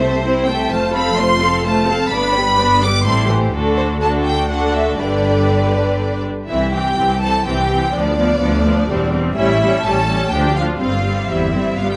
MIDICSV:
0, 0, Header, 1, 6, 480
1, 0, Start_track
1, 0, Key_signature, 0, "major"
1, 0, Tempo, 471328
1, 724, Time_signature, 3, 2, 24, 8
1, 3600, Tempo, 493016
1, 6960, Tempo, 479616
1, 11943, End_track
2, 0, Start_track
2, 0, Title_t, "Violin section"
2, 0, Program_c, 0, 48
2, 0, Note_on_c, 0, 72, 60
2, 454, Note_off_c, 0, 72, 0
2, 464, Note_on_c, 0, 79, 56
2, 715, Note_off_c, 0, 79, 0
2, 718, Note_on_c, 0, 81, 51
2, 961, Note_off_c, 0, 81, 0
2, 966, Note_on_c, 0, 83, 59
2, 1194, Note_on_c, 0, 84, 69
2, 1200, Note_off_c, 0, 83, 0
2, 1680, Note_off_c, 0, 84, 0
2, 1691, Note_on_c, 0, 81, 62
2, 2155, Note_on_c, 0, 83, 68
2, 2156, Note_off_c, 0, 81, 0
2, 2878, Note_off_c, 0, 83, 0
2, 2884, Note_on_c, 0, 86, 67
2, 3121, Note_off_c, 0, 86, 0
2, 3122, Note_on_c, 0, 84, 51
2, 3355, Note_off_c, 0, 84, 0
2, 3839, Note_on_c, 0, 72, 51
2, 3917, Note_off_c, 0, 72, 0
2, 4078, Note_on_c, 0, 81, 58
2, 4156, Note_off_c, 0, 81, 0
2, 4305, Note_on_c, 0, 79, 56
2, 4536, Note_off_c, 0, 79, 0
2, 4540, Note_on_c, 0, 78, 48
2, 4774, Note_off_c, 0, 78, 0
2, 4786, Note_on_c, 0, 76, 52
2, 5012, Note_on_c, 0, 74, 50
2, 5024, Note_off_c, 0, 76, 0
2, 6209, Note_off_c, 0, 74, 0
2, 6477, Note_on_c, 0, 76, 45
2, 6703, Note_off_c, 0, 76, 0
2, 6725, Note_on_c, 0, 79, 51
2, 7195, Note_on_c, 0, 81, 59
2, 7197, Note_off_c, 0, 79, 0
2, 7437, Note_off_c, 0, 81, 0
2, 7443, Note_on_c, 0, 79, 54
2, 7915, Note_off_c, 0, 79, 0
2, 7920, Note_on_c, 0, 74, 59
2, 9116, Note_off_c, 0, 74, 0
2, 9346, Note_on_c, 0, 76, 63
2, 9788, Note_off_c, 0, 76, 0
2, 9819, Note_on_c, 0, 81, 68
2, 10285, Note_on_c, 0, 79, 56
2, 10296, Note_off_c, 0, 81, 0
2, 10532, Note_off_c, 0, 79, 0
2, 10541, Note_on_c, 0, 77, 52
2, 10621, Note_off_c, 0, 77, 0
2, 10776, Note_on_c, 0, 77, 52
2, 11260, Note_off_c, 0, 77, 0
2, 11278, Note_on_c, 0, 76, 45
2, 11761, Note_off_c, 0, 76, 0
2, 11763, Note_on_c, 0, 77, 47
2, 11882, Note_off_c, 0, 77, 0
2, 11897, Note_on_c, 0, 79, 46
2, 11943, Note_off_c, 0, 79, 0
2, 11943, End_track
3, 0, Start_track
3, 0, Title_t, "Violin section"
3, 0, Program_c, 1, 48
3, 4, Note_on_c, 1, 76, 35
3, 9, Note_on_c, 1, 69, 32
3, 243, Note_off_c, 1, 76, 0
3, 246, Note_off_c, 1, 69, 0
3, 251, Note_on_c, 1, 72, 39
3, 254, Note_off_c, 1, 72, 0
3, 254, Note_on_c, 1, 72, 38
3, 473, Note_off_c, 1, 72, 0
3, 495, Note_on_c, 1, 76, 38
3, 496, Note_on_c, 1, 69, 38
3, 720, Note_on_c, 1, 72, 43
3, 725, Note_off_c, 1, 72, 0
3, 725, Note_on_c, 1, 72, 42
3, 730, Note_off_c, 1, 69, 0
3, 730, Note_off_c, 1, 76, 0
3, 948, Note_off_c, 1, 72, 0
3, 953, Note_on_c, 1, 69, 38
3, 955, Note_on_c, 1, 77, 38
3, 1198, Note_off_c, 1, 69, 0
3, 1199, Note_off_c, 1, 77, 0
3, 1202, Note_on_c, 1, 72, 38
3, 1204, Note_off_c, 1, 72, 0
3, 1204, Note_on_c, 1, 72, 35
3, 1440, Note_on_c, 1, 69, 36
3, 1442, Note_on_c, 1, 77, 36
3, 1445, Note_off_c, 1, 72, 0
3, 1679, Note_on_c, 1, 72, 41
3, 1681, Note_off_c, 1, 72, 0
3, 1681, Note_on_c, 1, 72, 39
3, 1683, Note_off_c, 1, 69, 0
3, 1684, Note_off_c, 1, 77, 0
3, 1905, Note_off_c, 1, 72, 0
3, 1932, Note_on_c, 1, 77, 39
3, 1933, Note_on_c, 1, 69, 41
3, 2164, Note_on_c, 1, 74, 45
3, 2165, Note_on_c, 1, 71, 44
3, 2167, Note_off_c, 1, 69, 0
3, 2167, Note_off_c, 1, 77, 0
3, 2385, Note_off_c, 1, 74, 0
3, 2386, Note_off_c, 1, 71, 0
3, 2402, Note_on_c, 1, 67, 40
3, 2402, Note_on_c, 1, 71, 41
3, 2632, Note_off_c, 1, 71, 0
3, 2635, Note_on_c, 1, 74, 39
3, 2642, Note_off_c, 1, 67, 0
3, 2644, Note_on_c, 1, 71, 39
3, 2871, Note_off_c, 1, 71, 0
3, 2879, Note_off_c, 1, 74, 0
3, 2883, Note_on_c, 1, 71, 39
3, 2887, Note_on_c, 1, 67, 37
3, 3117, Note_on_c, 1, 64, 40
3, 3119, Note_on_c, 1, 69, 39
3, 3121, Note_off_c, 1, 71, 0
3, 3123, Note_off_c, 1, 67, 0
3, 3340, Note_off_c, 1, 64, 0
3, 3341, Note_off_c, 1, 69, 0
3, 3355, Note_on_c, 1, 67, 40
3, 3365, Note_on_c, 1, 72, 40
3, 3599, Note_off_c, 1, 67, 0
3, 3603, Note_off_c, 1, 72, 0
3, 3609, Note_on_c, 1, 69, 48
3, 3610, Note_on_c, 1, 66, 46
3, 4041, Note_off_c, 1, 66, 0
3, 4041, Note_off_c, 1, 69, 0
3, 4070, Note_on_c, 1, 66, 40
3, 4070, Note_on_c, 1, 69, 38
3, 4532, Note_off_c, 1, 66, 0
3, 4532, Note_off_c, 1, 69, 0
3, 4545, Note_on_c, 1, 66, 39
3, 4547, Note_on_c, 1, 69, 39
3, 5013, Note_off_c, 1, 66, 0
3, 5014, Note_off_c, 1, 69, 0
3, 5018, Note_on_c, 1, 67, 39
3, 5019, Note_on_c, 1, 71, 39
3, 6279, Note_off_c, 1, 67, 0
3, 6280, Note_off_c, 1, 71, 0
3, 6472, Note_on_c, 1, 64, 42
3, 6700, Note_off_c, 1, 64, 0
3, 6722, Note_on_c, 1, 67, 47
3, 7205, Note_off_c, 1, 67, 0
3, 7207, Note_on_c, 1, 69, 44
3, 7443, Note_off_c, 1, 69, 0
3, 7449, Note_on_c, 1, 67, 46
3, 7918, Note_off_c, 1, 67, 0
3, 7923, Note_on_c, 1, 62, 49
3, 9093, Note_off_c, 1, 62, 0
3, 9352, Note_on_c, 1, 64, 60
3, 9791, Note_off_c, 1, 64, 0
3, 9821, Note_on_c, 1, 69, 58
3, 10287, Note_off_c, 1, 69, 0
3, 10298, Note_on_c, 1, 67, 48
3, 10534, Note_off_c, 1, 67, 0
3, 10535, Note_on_c, 1, 65, 44
3, 10762, Note_off_c, 1, 65, 0
3, 10774, Note_on_c, 1, 65, 44
3, 11259, Note_off_c, 1, 65, 0
3, 11270, Note_on_c, 1, 64, 35
3, 11747, Note_off_c, 1, 64, 0
3, 11752, Note_on_c, 1, 65, 40
3, 11877, Note_off_c, 1, 65, 0
3, 11892, Note_on_c, 1, 67, 36
3, 11943, Note_off_c, 1, 67, 0
3, 11943, End_track
4, 0, Start_track
4, 0, Title_t, "Viola section"
4, 0, Program_c, 2, 48
4, 8, Note_on_c, 2, 57, 37
4, 9, Note_on_c, 2, 60, 33
4, 226, Note_off_c, 2, 60, 0
4, 238, Note_on_c, 2, 60, 36
4, 241, Note_on_c, 2, 64, 38
4, 245, Note_off_c, 2, 57, 0
4, 464, Note_off_c, 2, 60, 0
4, 466, Note_off_c, 2, 64, 0
4, 486, Note_on_c, 2, 60, 35
4, 489, Note_on_c, 2, 57, 36
4, 719, Note_off_c, 2, 57, 0
4, 726, Note_off_c, 2, 60, 0
4, 730, Note_on_c, 2, 65, 41
4, 731, Note_on_c, 2, 57, 38
4, 950, Note_off_c, 2, 65, 0
4, 951, Note_off_c, 2, 57, 0
4, 966, Note_on_c, 2, 69, 42
4, 967, Note_on_c, 2, 60, 40
4, 1205, Note_off_c, 2, 60, 0
4, 1205, Note_off_c, 2, 69, 0
4, 1205, Note_on_c, 2, 57, 38
4, 1208, Note_on_c, 2, 65, 38
4, 1445, Note_off_c, 2, 57, 0
4, 1447, Note_off_c, 2, 65, 0
4, 1454, Note_on_c, 2, 60, 37
4, 1454, Note_on_c, 2, 69, 38
4, 1690, Note_off_c, 2, 60, 0
4, 1690, Note_off_c, 2, 69, 0
4, 1690, Note_on_c, 2, 57, 42
4, 1691, Note_on_c, 2, 65, 40
4, 1910, Note_off_c, 2, 57, 0
4, 1911, Note_off_c, 2, 65, 0
4, 1928, Note_on_c, 2, 69, 37
4, 1930, Note_on_c, 2, 60, 38
4, 2165, Note_off_c, 2, 69, 0
4, 2166, Note_off_c, 2, 60, 0
4, 2173, Note_on_c, 2, 59, 42
4, 2173, Note_on_c, 2, 62, 42
4, 2390, Note_off_c, 2, 59, 0
4, 2390, Note_off_c, 2, 62, 0
4, 2409, Note_on_c, 2, 59, 40
4, 2410, Note_on_c, 2, 55, 43
4, 2633, Note_off_c, 2, 59, 0
4, 2642, Note_on_c, 2, 62, 40
4, 2645, Note_on_c, 2, 59, 41
4, 2646, Note_off_c, 2, 55, 0
4, 2873, Note_off_c, 2, 59, 0
4, 2882, Note_off_c, 2, 62, 0
4, 2883, Note_on_c, 2, 55, 40
4, 2885, Note_on_c, 2, 59, 39
4, 3106, Note_off_c, 2, 55, 0
4, 3119, Note_on_c, 2, 55, 41
4, 3120, Note_on_c, 2, 60, 44
4, 3122, Note_off_c, 2, 59, 0
4, 3341, Note_off_c, 2, 55, 0
4, 3342, Note_off_c, 2, 60, 0
4, 3355, Note_on_c, 2, 52, 39
4, 3360, Note_on_c, 2, 57, 36
4, 3598, Note_off_c, 2, 52, 0
4, 3599, Note_on_c, 2, 50, 43
4, 3601, Note_off_c, 2, 57, 0
4, 3604, Note_on_c, 2, 62, 41
4, 4036, Note_off_c, 2, 50, 0
4, 4038, Note_off_c, 2, 62, 0
4, 4061, Note_on_c, 2, 62, 41
4, 4063, Note_on_c, 2, 50, 43
4, 4527, Note_off_c, 2, 62, 0
4, 4528, Note_off_c, 2, 50, 0
4, 4546, Note_on_c, 2, 50, 43
4, 4546, Note_on_c, 2, 62, 44
4, 5013, Note_off_c, 2, 50, 0
4, 5014, Note_off_c, 2, 62, 0
4, 5025, Note_on_c, 2, 62, 40
4, 5027, Note_on_c, 2, 50, 42
4, 6257, Note_off_c, 2, 62, 0
4, 6259, Note_off_c, 2, 50, 0
4, 6475, Note_on_c, 2, 60, 33
4, 6478, Note_on_c, 2, 52, 34
4, 6705, Note_off_c, 2, 52, 0
4, 6706, Note_off_c, 2, 60, 0
4, 6717, Note_on_c, 2, 52, 35
4, 6717, Note_on_c, 2, 60, 35
4, 6939, Note_off_c, 2, 52, 0
4, 6939, Note_off_c, 2, 60, 0
4, 6951, Note_on_c, 2, 52, 32
4, 6951, Note_on_c, 2, 60, 32
4, 7180, Note_off_c, 2, 60, 0
4, 7183, Note_off_c, 2, 52, 0
4, 7192, Note_on_c, 2, 60, 35
4, 7195, Note_on_c, 2, 52, 31
4, 7427, Note_off_c, 2, 60, 0
4, 7429, Note_off_c, 2, 52, 0
4, 7439, Note_on_c, 2, 60, 38
4, 7441, Note_on_c, 2, 52, 36
4, 7663, Note_off_c, 2, 60, 0
4, 7668, Note_off_c, 2, 52, 0
4, 7675, Note_on_c, 2, 60, 38
4, 7680, Note_on_c, 2, 52, 38
4, 7905, Note_on_c, 2, 53, 41
4, 7905, Note_on_c, 2, 59, 44
4, 7916, Note_off_c, 2, 60, 0
4, 7918, Note_off_c, 2, 52, 0
4, 8141, Note_off_c, 2, 53, 0
4, 8141, Note_off_c, 2, 59, 0
4, 8153, Note_on_c, 2, 53, 43
4, 8153, Note_on_c, 2, 59, 44
4, 8375, Note_off_c, 2, 59, 0
4, 8376, Note_off_c, 2, 53, 0
4, 8387, Note_on_c, 2, 59, 45
4, 8388, Note_on_c, 2, 53, 44
4, 8616, Note_off_c, 2, 59, 0
4, 8619, Note_off_c, 2, 53, 0
4, 8628, Note_on_c, 2, 59, 41
4, 8631, Note_on_c, 2, 53, 43
4, 8869, Note_off_c, 2, 59, 0
4, 8871, Note_off_c, 2, 53, 0
4, 8873, Note_on_c, 2, 55, 46
4, 8877, Note_on_c, 2, 60, 45
4, 9097, Note_off_c, 2, 55, 0
4, 9099, Note_off_c, 2, 60, 0
4, 9109, Note_on_c, 2, 55, 43
4, 9111, Note_on_c, 2, 60, 42
4, 9339, Note_off_c, 2, 55, 0
4, 9347, Note_off_c, 2, 60, 0
4, 9351, Note_on_c, 2, 55, 48
4, 9352, Note_on_c, 2, 61, 47
4, 9580, Note_off_c, 2, 61, 0
4, 9585, Note_off_c, 2, 55, 0
4, 9592, Note_on_c, 2, 61, 46
4, 9595, Note_on_c, 2, 55, 46
4, 9822, Note_off_c, 2, 61, 0
4, 9823, Note_off_c, 2, 55, 0
4, 9832, Note_on_c, 2, 61, 40
4, 9834, Note_on_c, 2, 55, 42
4, 10047, Note_off_c, 2, 55, 0
4, 10050, Note_off_c, 2, 61, 0
4, 10059, Note_on_c, 2, 55, 38
4, 10062, Note_on_c, 2, 61, 37
4, 10293, Note_off_c, 2, 55, 0
4, 10295, Note_off_c, 2, 61, 0
4, 10296, Note_on_c, 2, 62, 41
4, 10302, Note_on_c, 2, 53, 37
4, 10532, Note_off_c, 2, 53, 0
4, 10533, Note_off_c, 2, 62, 0
4, 10543, Note_on_c, 2, 62, 32
4, 10544, Note_on_c, 2, 53, 33
4, 10779, Note_on_c, 2, 60, 35
4, 10780, Note_off_c, 2, 53, 0
4, 10780, Note_off_c, 2, 62, 0
4, 10780, Note_on_c, 2, 55, 34
4, 11018, Note_off_c, 2, 55, 0
4, 11018, Note_off_c, 2, 60, 0
4, 11030, Note_on_c, 2, 55, 32
4, 11030, Note_on_c, 2, 60, 34
4, 11262, Note_off_c, 2, 55, 0
4, 11264, Note_off_c, 2, 60, 0
4, 11274, Note_on_c, 2, 55, 34
4, 11276, Note_on_c, 2, 60, 31
4, 11508, Note_off_c, 2, 55, 0
4, 11508, Note_off_c, 2, 60, 0
4, 11520, Note_on_c, 2, 55, 30
4, 11520, Note_on_c, 2, 60, 27
4, 11755, Note_off_c, 2, 60, 0
4, 11756, Note_off_c, 2, 55, 0
4, 11767, Note_on_c, 2, 55, 35
4, 11768, Note_on_c, 2, 59, 32
4, 11943, Note_off_c, 2, 55, 0
4, 11943, Note_off_c, 2, 59, 0
4, 11943, End_track
5, 0, Start_track
5, 0, Title_t, "Cello section"
5, 0, Program_c, 3, 48
5, 0, Note_on_c, 3, 48, 41
5, 695, Note_off_c, 3, 48, 0
5, 718, Note_on_c, 3, 41, 47
5, 2160, Note_off_c, 3, 41, 0
5, 2160, Note_on_c, 3, 43, 50
5, 3100, Note_off_c, 3, 43, 0
5, 3118, Note_on_c, 3, 45, 44
5, 3599, Note_off_c, 3, 45, 0
5, 3607, Note_on_c, 3, 38, 50
5, 4985, Note_off_c, 3, 38, 0
5, 5022, Note_on_c, 3, 43, 43
5, 6281, Note_off_c, 3, 43, 0
5, 6485, Note_on_c, 3, 36, 40
5, 6907, Note_off_c, 3, 36, 0
5, 6965, Note_on_c, 3, 36, 41
5, 7392, Note_off_c, 3, 36, 0
5, 7446, Note_on_c, 3, 36, 41
5, 7870, Note_off_c, 3, 36, 0
5, 7930, Note_on_c, 3, 38, 47
5, 8350, Note_off_c, 3, 38, 0
5, 8400, Note_on_c, 3, 38, 51
5, 8822, Note_off_c, 3, 38, 0
5, 8874, Note_on_c, 3, 40, 54
5, 9297, Note_off_c, 3, 40, 0
5, 9350, Note_on_c, 3, 45, 57
5, 9768, Note_off_c, 3, 45, 0
5, 9829, Note_on_c, 3, 45, 48
5, 10245, Note_off_c, 3, 45, 0
5, 10294, Note_on_c, 3, 38, 45
5, 10722, Note_off_c, 3, 38, 0
5, 10785, Note_on_c, 3, 43, 42
5, 11217, Note_off_c, 3, 43, 0
5, 11269, Note_on_c, 3, 40, 40
5, 11497, Note_off_c, 3, 40, 0
5, 11520, Note_on_c, 3, 43, 38
5, 11943, Note_off_c, 3, 43, 0
5, 11943, End_track
6, 0, Start_track
6, 0, Title_t, "Double bass section"
6, 0, Program_c, 4, 48
6, 0, Note_on_c, 4, 36, 39
6, 693, Note_off_c, 4, 36, 0
6, 725, Note_on_c, 4, 29, 42
6, 2163, Note_off_c, 4, 29, 0
6, 2170, Note_on_c, 4, 31, 45
6, 3105, Note_off_c, 4, 31, 0
6, 3119, Note_on_c, 4, 33, 44
6, 3600, Note_off_c, 4, 33, 0
6, 3604, Note_on_c, 4, 38, 43
6, 4983, Note_off_c, 4, 38, 0
6, 5024, Note_on_c, 4, 31, 40
6, 6282, Note_off_c, 4, 31, 0
6, 6481, Note_on_c, 4, 36, 37
6, 6904, Note_off_c, 4, 36, 0
6, 6959, Note_on_c, 4, 36, 40
6, 7389, Note_off_c, 4, 36, 0
6, 7447, Note_on_c, 4, 36, 37
6, 7870, Note_off_c, 4, 36, 0
6, 7925, Note_on_c, 4, 38, 42
6, 8347, Note_off_c, 4, 38, 0
6, 8400, Note_on_c, 4, 38, 57
6, 8823, Note_off_c, 4, 38, 0
6, 8882, Note_on_c, 4, 28, 45
6, 9301, Note_off_c, 4, 28, 0
6, 9346, Note_on_c, 4, 33, 50
6, 9766, Note_off_c, 4, 33, 0
6, 9824, Note_on_c, 4, 33, 53
6, 10242, Note_off_c, 4, 33, 0
6, 10301, Note_on_c, 4, 38, 42
6, 10726, Note_off_c, 4, 38, 0
6, 10783, Note_on_c, 4, 31, 36
6, 11216, Note_off_c, 4, 31, 0
6, 11285, Note_on_c, 4, 31, 42
6, 11708, Note_off_c, 4, 31, 0
6, 11760, Note_on_c, 4, 31, 35
6, 11943, Note_off_c, 4, 31, 0
6, 11943, End_track
0, 0, End_of_file